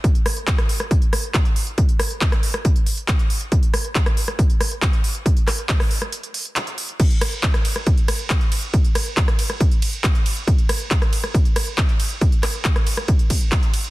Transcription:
\new DrumStaff \with { instrumentName = "Drums" } \drummode { \time 4/4 \tempo 4 = 138 <hh bd>16 hh16 <hho ss>16 hh16 <hc hh bd>16 <hh ss>16 hho16 <hh ss>16 <hh bd>16 hh16 <hho ss>16 hh16 <hc hh bd>16 hh16 hho16 hh16 | <hh bd>16 hh16 <hho ss>16 hh16 <hc hh bd>16 <hh ss>16 hho16 <hh ss>16 <hh bd>16 hh16 hho16 hh16 <hc hh bd>16 hh16 hho16 hh16 | <hh bd>16 hh16 <hho ss>16 hh16 <hc hh bd>16 <hh ss>16 hho16 <hh ss>16 <hh bd>16 hh16 <hho ss>16 hh16 <hc hh bd>16 hh16 hho16 hh16 | <hh bd>16 hh16 <hc hho ss>16 hh16 <hc hh bd>16 <hho ss>16 hho16 <hh ss>16 hh16 hh16 hho16 hh16 <hc hh>16 hh16 hho16 hh16 |
<cymc hh bd>16 hh16 <hho cymr ss>16 hh16 <hc hh bd>16 <hh ss>16 <hho cymr>16 ss16 <hh bd>16 hh16 <hho cymr ss>16 hh16 <hc hh bd>16 hh16 <hho cymr>16 hh16 | <hh bd>16 hh16 <hho cymr ss>16 hh16 <hc hh bd>16 <hh ss>16 <hho cymr>16 <hh ss>16 <hh bd>16 hh16 <hho cymr>16 hh16 <hc hh bd>16 hh16 <hho cymr>16 hh16 | <hh bd>16 hh16 <hho cymr ss>16 hh16 <hc hh bd>16 <hh ss>16 <hho cymr>16 <hh ss>16 <hh bd>16 hh16 <hho cymr ss>16 hh16 <hc hh bd>16 hh16 <hho cymr>16 hh16 | <hh bd>16 hh16 <hc hho cymr ss>16 hh16 <hc hh bd>16 <hh ss>16 <hho cymr>16 <hh ss>16 <hh bd>16 hh16 <hho bd cymr>16 hh16 <hc hh bd>16 hh16 <hho cymr>16 hh16 | }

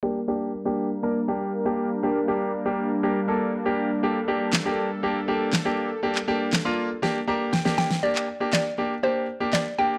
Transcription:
<<
  \new Staff \with { instrumentName = "Synth pluck" } { \time 4/4 \key g \minor \tempo 4 = 120 r1 | r1 | r1 | r2. r8 g''8 |
d''4 d''4 c''4 d''8 g''8 | }
  \new Staff \with { instrumentName = "Grand piano" } { \time 4/4 \key g \minor << { r1 | r1 | r1 | r2 r8 bes''8 g''4 |
r1 | } \\ { <bes d' g'>16 r16 <bes d' g'>8 r16 <bes d' g'>8 r16 <bes d' bes'>16 r16 <bes d' g'>8 r16 <bes d' g'>8 r16 | <bes d' g'>16 r16 <bes d' g'>8 r16 <bes d' g'>8 r16 <bes d' g'>16 r16 <bes d' a'>8 r16 <bes d' g'>8 r16 | <bes d' g'>16 r16 <bes d' g'>8 r16 <bes d' g'>8 r16 <bes d' g'>16 r16 <bes d' g'>8 r16 <bes d' g'>8 r16 | <bes d' g'>16 r16 <bes d' g'>8 r16 <bes d' f'>8 r16 <bes d' g'>16 r16 <bes d' g'>8 r16 <bes d' g'>8 r16 |
<bes d' g'>8 r16 <bes d' g'>8 r16 <bes d' g'>16 r16 <bes d' g'>8 r16 <bes d' g'>8 r16 <bes d' g'>16 r16 | } >> }
  \new Staff \with { instrumentName = "Supersaw synth" } { \time 4/4 \key g \minor << { bes'1~ | bes'1 | a'1~ | a'1 |
r1 | } \\ { <g bes d'>1~ | <g bes d'>1~ | <g bes d'>1~ | <g bes d'>1 |
r1 | } >> }
  \new DrumStaff \with { instrumentName = "Drums" } \drummode { \time 4/4 r4 r4 r4 r4 | r4 r4 r4 r4 | r4 <hc sn>4 r4 <hc sn>4 | r16 hc8. <hc sn>4 sn4 sn16 sn16 sn16 sn16 |
r16 hc8. <hc sn>4 r4 <hc sn>4 | }
>>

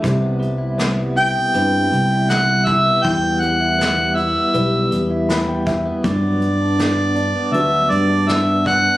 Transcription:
<<
  \new Staff \with { instrumentName = "Harmonica" } { \time 4/4 \key g \major \tempo 4 = 80 r4. g''4. fis''8 e''8 | g''8 fis''4 e''4. r4 | d''2 e''8 d''8 e''8 fis''8 | }
  \new Staff \with { instrumentName = "Grand piano" } { \time 4/4 \key g \major << { r1 | r2. b''16 g''16 e''8 | r1 | } \\ { c2 <c' e' b'>2 | e2 <b e' g'>2 | g2 <d' fis' b'>2 | } >> }
  \new Staff \with { instrumentName = "Clean electric guitar" } { \time 4/4 \key g \major g16 b16 g16 e'16 b16 g16 e'16 b16 g8 g16 e'8 g16 e'16 b16 | g16 b16 g16 e'16 b16 g16 e'16 b16 g16 b16 g16 e'16 b16 g16 e'16 b16 | fis16 b8 d'16 b8 d'16 b16 fis16 b8 d'16 b8 d'16 b16 | }
  \new Staff \with { instrumentName = "Fingered electric bass" } { \clef bass \time 4/4 \key g \major c,2 g,8 c,4. | e,2 b,,8 e,4. | g,2 d,8 g,4. | }
  \new DrumStaff \with { instrumentName = "Drums" } \drummode { \time 4/4 <hh bd>8 hh8 <hh sn>8 hh8 hh8 hh8 <hh sn>8 <hh bd>8 | <hh bd>8 hh8 <hh sn>8 hh8 hh8 hh8 <hh sn>8 <hh bd>8 | <hh bd>8 hh8 <hh sn>8 hh8 hh8 hh8 <hh sn>8 <hh bd>8 | }
>>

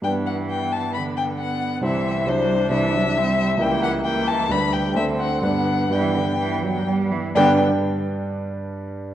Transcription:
<<
  \new Staff \with { instrumentName = "Violin" } { \time 4/4 \key g \major \tempo 4 = 131 g''8 fis''8 g''8 a''8 b''8 g''8 fis''4 | e''4 c''4 e''2 | g''8 fis''8 g''8 a''8 b''8 g''8 e''8 fis''8 | fis''4 g''2 r4 |
g''8 r2. r8 | }
  \new Staff \with { instrumentName = "Grand piano" } { \time 4/4 \key g \major <g, g d' b'>1 | <c, g e' c''>4 <c, g e' c''>4 <c, g e' c''>2 | <cis, g e' ais'>2 <d, g d' b'>4 <d, a d' c''>4 | <g, g d' b'>4 <g, g d' b'>2. |
<g, g d' b' d''>8 r2. r8 | }
  \new Staff \with { instrumentName = "Viola" } { \time 4/4 \key g \major b4 b2 b4 | c'4 d'2 c'4 | ais4 ais4 g4 c'4 | b4 b2~ b8 r8 |
b8 r2. r8 | }
  \new Staff \with { instrumentName = "Cello" } { \clef bass \time 4/4 \key g \major e2 d2 | e4 fis8 g8 e8 fis8 g4 | e4 e4 d4 d4 | d4 e8 d8 e8 fis8 g8 e8 |
d8 r2. r8 | }
>>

